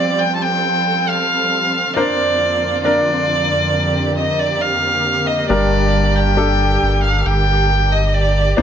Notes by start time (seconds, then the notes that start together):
Already playing: F3 G3 C4 F4 G4 C5 D5
0.19 A4 G5
0.36 A5
0.42 G5
1.08 F5
1.96 F2 D3 A#3 D4 F4 A#4 C5 D5
2.84 D4 A#4 D5
3.74 G4
4.18 D#5
4.39 D5
4.61 F5
5.27 D#5
5.49 G1 G2 D3 G3 D4 G4 A#4 D5
6.15 G5
6.37 D4 G4 A4
6.82 G1
7.03 F5
7.26 G1 G5
7.92 D#5
8.14 D5
8.57 C2 C3 G3 D4 D#4 C5 D5